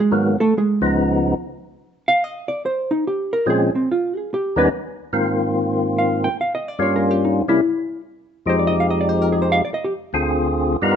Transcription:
0.00 G#3 G#4
0.11 G#2 D#3 F#3 A#3 B3
0.40 A3 A4
0.57 G#3 G#4
0.81 C#2 C#3 F3 B3 D#4
2.08 F5
2.24 D#5
2.48 D5
2.66 C5
2.91 D#4
3.07 G4
3.33 A#4
3.46 A#2 F3 G#3 C4 C#4 G#4
3.75 C4
3.92 F4
4.17 G#4
4.34 G4
4.56 D#2 D#3 G3 B3 C#4 D#4 B4
5.13 G#2 D#3 A#3 C4 F4
5.98 F5
6.24 G5
6.41 F5
6.55 D#5
6.68 D5
6.79 G2 G3 A#3 C#4 F4 C#5
6.96 A#4
7.11 G4
7.25 D#4
7.48 C3 G3 A#3 C#4 E4
8.46 F2 F3 G#3 D#4 G4 C5
8.59 D5
8.67 D#5
8.80 F5
8.90 D#5
9.01 D5
9.09 C5
9.22 A#4
9.32 G#4
9.42 C5
9.52 F5
9.65 D5
9.74 D#5
9.84 G4
10.13 D2 D3 C4 F4 G#4
10.82 G2 G3 B3 D#4 F4 A#4

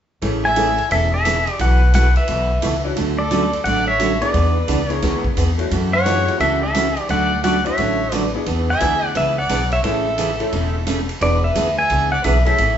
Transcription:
0.22 A1 C#3 E3 A3 C#4 E4 G#4, ride
0.45 E5 G#5
0.56 C#3 E3 A3 C#4 E4 G#4 A4, hi-hat pedal, ride
0.78 ride
0.91 E1 C#3 E3 A3 C#4 G#4 A4 E5, ride
1.14 A4 E5
1.25 C#3 E3 A3 C#4 G#4, hi-hat pedal, ride
1.47 ride
1.59 B1 B2 E3 A3 E4 F#4 B4 F#5, ride
1.94 B2 E3 A3 E4 F#4 B4 F#5, hi-hat pedal, ride
2.16 B4 E5, ride
2.28 B1 B2 E3 A3 E4 F#4, ride
2.62 C#2 B2 E3 A3 E4 F#4, hi-hat pedal, ride
2.84 C#4 D4 E4 F#4
2.96 D2 D3 F#3 A3 C#4 F#4, ride
3.19 A4 D5
3.31 D3 F#3 A3 C#4 F#4, hi-hat pedal, ride
3.53 ride
3.64 A1 D3 F#3 A3 C#4 F#4 D5 F#5, ride
3.88 C#5 E5
3.99 D3 F#3 A3 C#4 F#4, hi-hat pedal, ride
4.21 B3 D4 E4 G#4 B4 D5, ride
4.34 E2 E3 B3 D4 G#4, ride
4.68 C#2 E3 B3 D4 G#4, hi-hat pedal, ride
4.88 B3 D4 E4 G#4 A#4 C#5, ride
5.02 D2 E3 B3 D4 G#4, snare, ride
5.24 kick
5.37 E2 E3 B3 D4 G#4, hi-hat pedal, ride
5.58 A3 C#4 E4 F#4, ride
5.71 F#2 C#3 E3 A3 C#4 F#4, ride
5.93 C#5 F#5
6.05 C#3 E3 G#3 A3 C4 C#4 D#4 F4 F#4, hi-hat pedal, ride
6.28 A3 C#4 E4 F#4, ride
6.40 C#2 C#3 E3 A3 C#4 F#4 A4 E5, ride
6.62 A4 E5
6.74 C#3 E3 A3 C#4 F#4, hi-hat pedal, ride
6.97 ride
7.09 D2 D3 F#3 A3 C#4 F#4 D5 F#5, ride
7.43 D3 F#3 A3 C#4 F#4 D5 F#5, hi-hat pedal, ride
7.65 C#4 D4 E4 F#4 C#5 E5, ride
7.78 A1 D3 F#3 A3 C#4 F#4, ride
8.12 D3 F#3 A3 C#4 F#4 B4 D5, hi-hat pedal, ride
8.35 B3 D4 E4 G#4
8.46 E2 E3 B3 D4 G#4, ride
8.70 E5 G#5
8.80 D2 E3 B3 D4 E4 G#4, hi-hat pedal, ride
9.15 C#2 E3 B3 D4 G#4 B4 E5, ride
9.38 D5 F#5
9.49 B1 E3 B3 D4 G#4, hi-hat pedal, ride
9.72 C#5 E5, ride
9.83 A1 C#3 E3 A3 C#4 E4 G#4 A4 E5, ride
10.18 C#3 E3 A3 C#4 G#4, hi-hat pedal, ride
10.40 A3 C#4 E4 A4, ride
10.52 E1 C#3 E3 A3 C#4 G#4, ride
10.86 C#3 E3 A3 C#4 G#4, hi-hat pedal, ride
11.09 ride
11.21 E1 E3 B3 D4 G#4 B4 D5, ride
11.44 B4 E5
11.55 D2 E3 B3 D4 G#4, hi-hat pedal, ride
11.78 E5 G#5
11.90 C#2 E3 B3 D4 G#4, ride
12.12 D5 F#5
12.24 B1 E3 B3 D4 G#4 B4 E5, hi-hat pedal, ride
12.45 A3 C#4 E4 G#4 A4 E5, ride
12.58 A1 C#3 E3 A3 C#4 G#4, ride

